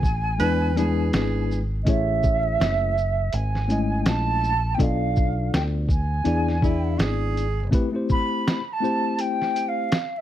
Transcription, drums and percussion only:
0.03 kick medium
0.03 shaker medium
0.40 closed hi-hat medium
0.77 closed hi-hat medium
0.77 shaker soft
1.13 snare loud
1.13 closed hi-hat medium
1.51 shaker soft
1.86 kick loud
1.86 closed hi-hat medium
2.23 kick medium
2.23 shaker soft
2.61 snare loud
2.61 closed hi-hat medium
2.98 shaker medium
3.33 closed hi-hat medium
3.55 snare soft
3.70 closed hi-hat soft
3.70 shaker medium
4.06 snare loud
4.06 closed hi-hat medium
4.44 shaker soft
4.79 kick loud
4.79 closed hi-hat medium
5.16 kick medium
5.16 shaker soft
5.54 snare loud
5.54 closed hi-hat medium
5.89 kick medium
5.89 shaker medium
6.25 closed hi-hat medium
6.48 snare soft
6.62 kick medium
6.62 shaker soft
6.99 snare loud
6.99 closed hi-hat medium
7.37 closed hi-hat soft
7.37 shaker soft
7.72 kick loud
7.72 closed hi-hat medium
8.09 kick medium
8.09 shaker soft
8.48 snare loud
8.48 closed hi-hat medium
8.84 shaker medium
9.18 closed hi-hat medium
9.42 snare soft
9.56 closed hi-hat medium
9.56 shaker medium
9.92 snare loud
9.92 closed hi-hat medium

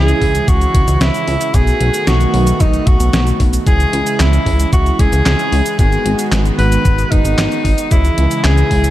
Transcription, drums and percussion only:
0.08 closed hi-hat soft
0.08 cabasa soft
0.21 kick medium
0.21 open hi-hat medium
0.35 closed hi-hat medium
0.35 cabasa medium
0.48 kick loud
0.48 closed hi-hat medium
0.48 cabasa soft
0.61 closed hi-hat soft
0.61 cabasa soft
0.74 kick loud
0.74 closed hi-hat loud
0.88 closed hi-hat medium
0.88 cabasa medium
1.01 snare loud
1.01 closed hi-hat medium
1.01 cabasa soft
1.14 closed hi-hat soft
1.14 cabasa soft
1.28 open hi-hat medium
1.41 closed hi-hat medium
1.41 cabasa medium
1.54 kick loud
1.54 closed hi-hat soft
1.54 cabasa soft
1.67 closed hi-hat soft
1.67 cabasa soft
1.81 closed hi-hat medium
1.94 closed hi-hat medium
1.94 cabasa medium
2.07 snare loud
2.07 closed hi-hat medium
2.07 cabasa medium
2.21 closed hi-hat soft
2.21 cabasa soft
2.34 open hi-hat medium
2.47 closed hi-hat medium
2.47 cabasa medium
2.60 kick loud
2.60 closed hi-hat medium
2.60 cabasa soft
2.73 closed hi-hat soft
2.73 cabasa soft
2.87 kick loud
2.87 closed hi-hat medium
3.00 closed hi-hat medium
3.00 cabasa medium
3.13 snare loud
3.13 closed hi-hat medium
3.13 cabasa soft
3.27 closed hi-hat soft
3.27 cabasa soft
3.40 kick medium
3.40 open hi-hat medium
3.53 closed hi-hat medium
3.53 cabasa medium
3.67 kick loud
3.67 closed hi-hat medium
3.67 cabasa soft
3.80 closed hi-hat soft
3.80 cabasa soft
3.93 closed hi-hat medium
4.07 closed hi-hat medium
4.07 cabasa medium
4.20 snare loud
4.20 clap medium
4.20 closed hi-hat medium
4.20 cabasa medium
4.33 closed hi-hat soft
4.33 cabasa soft
4.46 kick medium
4.46 open hi-hat medium
4.60 closed hi-hat medium
4.60 cabasa medium
4.73 kick loud
4.73 closed hi-hat soft
4.73 cabasa medium
4.86 closed hi-hat soft
4.86 cabasa soft
4.99 kick loud
4.99 closed hi-hat medium
5.13 closed hi-hat soft
5.13 cabasa medium
5.26 snare loud
5.26 clap medium
5.26 closed hi-hat soft
5.26 cabasa soft
5.39 closed hi-hat soft
5.39 cabasa soft
5.52 open hi-hat medium
5.66 closed hi-hat medium
5.66 cabasa medium
5.79 kick loud
5.79 closed hi-hat medium
5.79 cabasa medium
5.92 closed hi-hat soft
5.92 cabasa soft
6.06 closed hi-hat medium
6.19 closed hi-hat medium
6.19 cabasa medium
6.32 snare loud
6.32 clap loud
6.32 closed hi-hat soft
6.32 cabasa medium
6.46 closed hi-hat soft
6.46 cabasa soft
6.59 open hi-hat medium
6.72 closed hi-hat medium
6.72 cabasa medium
6.85 kick loud
6.85 closed hi-hat medium
6.85 cabasa medium
6.99 closed hi-hat soft
6.99 cabasa soft
7.12 kick loud
7.12 closed hi-hat medium
7.25 closed hi-hat soft
7.25 cabasa medium
7.38 snare loud
7.38 clap medium
7.38 closed hi-hat soft
7.38 cabasa medium
7.52 closed hi-hat soft
7.52 cabasa soft
7.65 kick medium
7.65 open hi-hat medium
7.78 closed hi-hat medium
7.78 cabasa medium
7.91 kick loud
7.91 closed hi-hat medium
7.91 cabasa medium
8.05 closed hi-hat soft
8.05 cabasa soft
8.18 closed hi-hat medium
8.31 closed hi-hat medium
8.31 cabasa medium
8.44 snare loud
8.44 clap loud
8.44 closed hi-hat medium
8.44 cabasa medium
8.58 closed hi-hat soft
8.58 cabasa soft
8.71 kick medium
8.71 open hi-hat medium
8.84 closed hi-hat medium
8.84 cabasa medium

